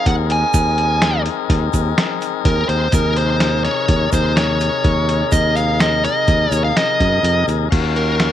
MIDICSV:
0, 0, Header, 1, 5, 480
1, 0, Start_track
1, 0, Tempo, 479233
1, 537, Time_signature, 5, 2, 24, 8
1, 8333, End_track
2, 0, Start_track
2, 0, Title_t, "Lead electric guitar"
2, 0, Program_c, 0, 29
2, 71, Note_on_c, 0, 78, 87
2, 134, Note_off_c, 0, 78, 0
2, 318, Note_on_c, 0, 80, 90
2, 1225, Note_off_c, 0, 80, 0
2, 2459, Note_on_c, 0, 70, 78
2, 2691, Note_off_c, 0, 70, 0
2, 2695, Note_on_c, 0, 72, 76
2, 2941, Note_off_c, 0, 72, 0
2, 2950, Note_on_c, 0, 70, 75
2, 3165, Note_off_c, 0, 70, 0
2, 3182, Note_on_c, 0, 72, 87
2, 3624, Note_off_c, 0, 72, 0
2, 3651, Note_on_c, 0, 73, 83
2, 4098, Note_off_c, 0, 73, 0
2, 4144, Note_on_c, 0, 72, 81
2, 4362, Note_off_c, 0, 72, 0
2, 4378, Note_on_c, 0, 73, 92
2, 5330, Note_on_c, 0, 75, 90
2, 5365, Note_off_c, 0, 73, 0
2, 5571, Note_off_c, 0, 75, 0
2, 5575, Note_on_c, 0, 77, 90
2, 5814, Note_off_c, 0, 77, 0
2, 5818, Note_on_c, 0, 75, 90
2, 6049, Note_off_c, 0, 75, 0
2, 6061, Note_on_c, 0, 75, 89
2, 6532, Note_off_c, 0, 75, 0
2, 6532, Note_on_c, 0, 73, 89
2, 6651, Note_off_c, 0, 73, 0
2, 6655, Note_on_c, 0, 77, 88
2, 6766, Note_off_c, 0, 77, 0
2, 6786, Note_on_c, 0, 75, 86
2, 7462, Note_off_c, 0, 75, 0
2, 7983, Note_on_c, 0, 70, 81
2, 8333, Note_off_c, 0, 70, 0
2, 8333, End_track
3, 0, Start_track
3, 0, Title_t, "Tonewheel organ"
3, 0, Program_c, 1, 16
3, 0, Note_on_c, 1, 60, 60
3, 0, Note_on_c, 1, 63, 56
3, 0, Note_on_c, 1, 68, 54
3, 0, Note_on_c, 1, 70, 67
3, 2883, Note_off_c, 1, 60, 0
3, 2886, Note_off_c, 1, 63, 0
3, 2892, Note_off_c, 1, 68, 0
3, 2897, Note_off_c, 1, 70, 0
3, 2910, Note_on_c, 1, 48, 67
3, 2918, Note_on_c, 1, 63, 54
3, 2933, Note_on_c, 1, 68, 60
3, 2939, Note_on_c, 1, 70, 72
3, 7685, Note_off_c, 1, 48, 0
3, 7689, Note_off_c, 1, 63, 0
3, 7697, Note_off_c, 1, 68, 0
3, 7700, Note_off_c, 1, 70, 0
3, 7704, Note_on_c, 1, 61, 70
3, 7717, Note_on_c, 1, 77, 65
3, 7731, Note_on_c, 1, 66, 62
3, 7738, Note_on_c, 1, 70, 78
3, 8333, Note_off_c, 1, 61, 0
3, 8333, Note_off_c, 1, 66, 0
3, 8333, Note_off_c, 1, 70, 0
3, 8333, Note_off_c, 1, 77, 0
3, 8333, End_track
4, 0, Start_track
4, 0, Title_t, "Fretless electric bass"
4, 0, Program_c, 2, 35
4, 63, Note_on_c, 2, 39, 90
4, 430, Note_off_c, 2, 39, 0
4, 540, Note_on_c, 2, 39, 93
4, 1277, Note_off_c, 2, 39, 0
4, 1499, Note_on_c, 2, 39, 85
4, 1682, Note_off_c, 2, 39, 0
4, 1739, Note_on_c, 2, 39, 82
4, 1922, Note_off_c, 2, 39, 0
4, 2456, Note_on_c, 2, 39, 101
4, 2640, Note_off_c, 2, 39, 0
4, 2690, Note_on_c, 2, 39, 80
4, 2876, Note_off_c, 2, 39, 0
4, 2932, Note_on_c, 2, 39, 95
4, 3671, Note_off_c, 2, 39, 0
4, 3893, Note_on_c, 2, 39, 96
4, 4077, Note_off_c, 2, 39, 0
4, 4131, Note_on_c, 2, 39, 90
4, 4686, Note_off_c, 2, 39, 0
4, 4853, Note_on_c, 2, 39, 98
4, 5223, Note_off_c, 2, 39, 0
4, 5329, Note_on_c, 2, 39, 91
4, 6071, Note_off_c, 2, 39, 0
4, 6289, Note_on_c, 2, 39, 86
4, 6476, Note_off_c, 2, 39, 0
4, 6525, Note_on_c, 2, 39, 82
4, 6714, Note_off_c, 2, 39, 0
4, 7018, Note_on_c, 2, 42, 80
4, 7233, Note_off_c, 2, 42, 0
4, 7243, Note_on_c, 2, 41, 83
4, 7465, Note_off_c, 2, 41, 0
4, 7489, Note_on_c, 2, 39, 79
4, 7709, Note_off_c, 2, 39, 0
4, 7733, Note_on_c, 2, 39, 87
4, 8290, Note_off_c, 2, 39, 0
4, 8333, End_track
5, 0, Start_track
5, 0, Title_t, "Drums"
5, 61, Note_on_c, 9, 36, 100
5, 62, Note_on_c, 9, 42, 81
5, 162, Note_off_c, 9, 36, 0
5, 162, Note_off_c, 9, 42, 0
5, 300, Note_on_c, 9, 42, 60
5, 400, Note_off_c, 9, 42, 0
5, 539, Note_on_c, 9, 82, 64
5, 541, Note_on_c, 9, 36, 100
5, 541, Note_on_c, 9, 42, 72
5, 639, Note_off_c, 9, 82, 0
5, 641, Note_off_c, 9, 36, 0
5, 641, Note_off_c, 9, 42, 0
5, 781, Note_on_c, 9, 42, 55
5, 881, Note_off_c, 9, 42, 0
5, 1019, Note_on_c, 9, 38, 111
5, 1019, Note_on_c, 9, 42, 84
5, 1119, Note_off_c, 9, 38, 0
5, 1119, Note_off_c, 9, 42, 0
5, 1258, Note_on_c, 9, 42, 56
5, 1358, Note_off_c, 9, 42, 0
5, 1499, Note_on_c, 9, 36, 103
5, 1501, Note_on_c, 9, 38, 31
5, 1501, Note_on_c, 9, 42, 85
5, 1599, Note_off_c, 9, 36, 0
5, 1601, Note_off_c, 9, 38, 0
5, 1601, Note_off_c, 9, 42, 0
5, 1738, Note_on_c, 9, 42, 61
5, 1739, Note_on_c, 9, 36, 65
5, 1739, Note_on_c, 9, 82, 52
5, 1838, Note_off_c, 9, 42, 0
5, 1839, Note_off_c, 9, 36, 0
5, 1839, Note_off_c, 9, 82, 0
5, 1982, Note_on_c, 9, 38, 110
5, 1982, Note_on_c, 9, 42, 81
5, 2082, Note_off_c, 9, 38, 0
5, 2082, Note_off_c, 9, 42, 0
5, 2219, Note_on_c, 9, 82, 20
5, 2223, Note_on_c, 9, 42, 65
5, 2319, Note_off_c, 9, 82, 0
5, 2323, Note_off_c, 9, 42, 0
5, 2455, Note_on_c, 9, 42, 82
5, 2456, Note_on_c, 9, 36, 101
5, 2555, Note_off_c, 9, 42, 0
5, 2556, Note_off_c, 9, 36, 0
5, 2694, Note_on_c, 9, 42, 66
5, 2794, Note_off_c, 9, 42, 0
5, 2928, Note_on_c, 9, 42, 82
5, 2933, Note_on_c, 9, 36, 101
5, 2937, Note_on_c, 9, 82, 66
5, 3028, Note_off_c, 9, 42, 0
5, 3033, Note_off_c, 9, 36, 0
5, 3037, Note_off_c, 9, 82, 0
5, 3170, Note_on_c, 9, 42, 57
5, 3270, Note_off_c, 9, 42, 0
5, 3409, Note_on_c, 9, 38, 105
5, 3409, Note_on_c, 9, 42, 82
5, 3509, Note_off_c, 9, 38, 0
5, 3509, Note_off_c, 9, 42, 0
5, 3652, Note_on_c, 9, 38, 32
5, 3652, Note_on_c, 9, 42, 55
5, 3752, Note_off_c, 9, 38, 0
5, 3752, Note_off_c, 9, 42, 0
5, 3891, Note_on_c, 9, 42, 76
5, 3893, Note_on_c, 9, 36, 102
5, 3991, Note_off_c, 9, 42, 0
5, 3993, Note_off_c, 9, 36, 0
5, 4132, Note_on_c, 9, 82, 51
5, 4133, Note_on_c, 9, 36, 69
5, 4133, Note_on_c, 9, 42, 57
5, 4232, Note_off_c, 9, 82, 0
5, 4233, Note_off_c, 9, 36, 0
5, 4233, Note_off_c, 9, 42, 0
5, 4375, Note_on_c, 9, 38, 108
5, 4375, Note_on_c, 9, 42, 80
5, 4475, Note_off_c, 9, 38, 0
5, 4475, Note_off_c, 9, 42, 0
5, 4611, Note_on_c, 9, 82, 18
5, 4617, Note_on_c, 9, 42, 58
5, 4711, Note_off_c, 9, 82, 0
5, 4718, Note_off_c, 9, 42, 0
5, 4852, Note_on_c, 9, 42, 75
5, 4853, Note_on_c, 9, 36, 103
5, 4953, Note_off_c, 9, 36, 0
5, 4953, Note_off_c, 9, 42, 0
5, 5097, Note_on_c, 9, 42, 62
5, 5197, Note_off_c, 9, 42, 0
5, 5328, Note_on_c, 9, 82, 59
5, 5332, Note_on_c, 9, 36, 102
5, 5333, Note_on_c, 9, 42, 72
5, 5428, Note_off_c, 9, 82, 0
5, 5432, Note_off_c, 9, 36, 0
5, 5433, Note_off_c, 9, 42, 0
5, 5570, Note_on_c, 9, 82, 19
5, 5576, Note_on_c, 9, 42, 58
5, 5670, Note_off_c, 9, 82, 0
5, 5676, Note_off_c, 9, 42, 0
5, 5807, Note_on_c, 9, 82, 19
5, 5813, Note_on_c, 9, 38, 112
5, 5813, Note_on_c, 9, 42, 85
5, 5907, Note_off_c, 9, 82, 0
5, 5913, Note_off_c, 9, 38, 0
5, 5913, Note_off_c, 9, 42, 0
5, 6055, Note_on_c, 9, 42, 59
5, 6155, Note_off_c, 9, 42, 0
5, 6285, Note_on_c, 9, 82, 19
5, 6289, Note_on_c, 9, 42, 82
5, 6290, Note_on_c, 9, 36, 104
5, 6386, Note_off_c, 9, 82, 0
5, 6389, Note_off_c, 9, 42, 0
5, 6390, Note_off_c, 9, 36, 0
5, 6530, Note_on_c, 9, 82, 45
5, 6533, Note_on_c, 9, 42, 65
5, 6630, Note_off_c, 9, 82, 0
5, 6633, Note_off_c, 9, 42, 0
5, 6778, Note_on_c, 9, 38, 103
5, 6778, Note_on_c, 9, 42, 83
5, 6878, Note_off_c, 9, 38, 0
5, 6878, Note_off_c, 9, 42, 0
5, 7014, Note_on_c, 9, 36, 77
5, 7016, Note_on_c, 9, 42, 66
5, 7114, Note_off_c, 9, 36, 0
5, 7116, Note_off_c, 9, 42, 0
5, 7256, Note_on_c, 9, 42, 83
5, 7356, Note_off_c, 9, 42, 0
5, 7494, Note_on_c, 9, 82, 19
5, 7499, Note_on_c, 9, 42, 60
5, 7594, Note_off_c, 9, 82, 0
5, 7599, Note_off_c, 9, 42, 0
5, 7733, Note_on_c, 9, 42, 72
5, 7733, Note_on_c, 9, 49, 88
5, 7734, Note_on_c, 9, 36, 94
5, 7833, Note_off_c, 9, 42, 0
5, 7833, Note_off_c, 9, 49, 0
5, 7834, Note_off_c, 9, 36, 0
5, 7975, Note_on_c, 9, 42, 53
5, 8076, Note_off_c, 9, 42, 0
5, 8210, Note_on_c, 9, 38, 102
5, 8210, Note_on_c, 9, 42, 73
5, 8310, Note_off_c, 9, 38, 0
5, 8310, Note_off_c, 9, 42, 0
5, 8333, End_track
0, 0, End_of_file